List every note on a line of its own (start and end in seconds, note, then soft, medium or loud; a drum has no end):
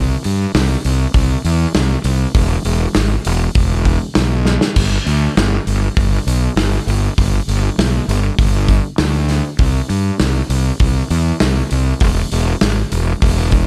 0.00 0.14 C2 loud
0.24 0.45 G2 medium
0.24 open hi-hat medium
0.54 0.75 C2 medium
0.54 snare loud
0.54 open hi-hat medium
0.85 1.05 C2 medium
0.85 open hi-hat medium
1.14 1.35 C2 medium
1.14 kick loud
1.14 open hi-hat medium
1.44 1.65 E2 medium
1.44 open hi-hat medium
1.75 1.95 C2 medium
1.75 snare loud
1.75 open hi-hat medium
2.04 2.25 C2 medium
2.04 open hi-hat medium
2.35 2.55 E1 medium
2.35 kick loud
2.35 open hi-hat medium
2.65 2.85 E1 medium
2.65 open hi-hat medium
2.95 3.16 G#1 loud
2.95 snare medium
2.95 open hi-hat medium
3.25 3.46 E1 medium
3.25 open hi-hat medium
3.55 3.96 E1 medium
3.55 kick loud
3.55 open hi-hat medium
3.85 kick medium
3.85 open hi-hat medium
4.15 4.57 B1 medium
4.15 snare loud
4.15 open hi-hat medium
4.45 snare medium
4.61 snare medium
4.76 4.97 G1 medium
4.76 kick loud
4.76 open hi-hat medium
4.76 crash loud
5.07 5.27 D2 medium
5.07 open hi-hat medium
5.37 5.57 G1 loud
5.37 snare loud
5.37 open hi-hat medium
5.67 5.87 G1 medium
5.67 open hi-hat medium
5.97 6.17 G1 medium
5.97 kick loud
5.97 open hi-hat medium
6.27 6.47 B1 medium
6.27 open hi-hat medium
6.56 6.77 G1 loud
6.56 snare loud
6.56 open hi-hat medium
6.87 7.07 G1 loud
6.87 open hi-hat medium
7.18 7.38 G1 medium
7.18 kick loud
7.18 open hi-hat medium
7.48 7.68 G1 medium
7.48 open hi-hat medium
7.78 7.99 B1 medium
7.78 snare loud
7.78 open hi-hat medium
8.08 8.29 G1 medium
8.08 open hi-hat medium
8.39 8.80 G1 medium
8.39 kick loud
8.39 open hi-hat medium
8.68 kick medium
8.68 open hi-hat medium
8.98 9.40 D2 medium
8.98 snare loud
8.98 open hi-hat medium
9.29 snare soft
9.29 open hi-hat soft
9.59 9.80 C2 medium
9.59 kick loud
9.59 open hi-hat medium
9.90 10.10 G2 medium
9.90 open hi-hat medium
10.20 10.40 C2 medium
10.20 snare loud
10.20 open hi-hat medium
10.49 10.70 C2 medium
10.49 open hi-hat medium
10.80 11.01 C2 loud
10.80 kick loud
10.80 open hi-hat medium
11.10 11.31 E2 loud
11.10 open hi-hat medium
11.40 11.61 C2 medium
11.40 snare loud
11.40 open hi-hat medium
11.71 11.92 C2 medium
11.71 open hi-hat medium
12.00 12.22 E1 loud
12.00 kick loud
12.00 open hi-hat medium
12.32 12.52 E1 medium
12.32 open hi-hat medium
12.61 12.82 G#1 medium
12.61 snare loud
12.61 open hi-hat medium
12.92 13.13 E1 medium
12.92 open hi-hat medium
13.22 13.64 E1 loud
13.22 kick loud
13.22 open hi-hat medium
13.52 kick medium
13.52 open hi-hat medium